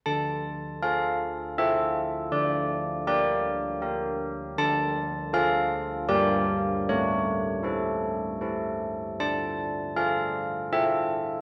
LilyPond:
\new Staff \with { instrumentName = "Church bells" } { \time 3/4 \key d \minor \tempo 4 = 79 << { a''4 f''4 e''4 | d''4 d''2 | a''4 f''4 d''4 | cis''2~ cis''8 r8 |
a''4 f''4 e''4 | } \\ { d4 <f' a'>4 <f' a'>4 | d4 <g' bes'>4 <g' bes'>4 | d4 <f' a'>4 <g g' bes'>4 | a4 <e' a'>4 <e' a'>4 |
d'4 <f' a'>4 <f' a'>4 | } >> }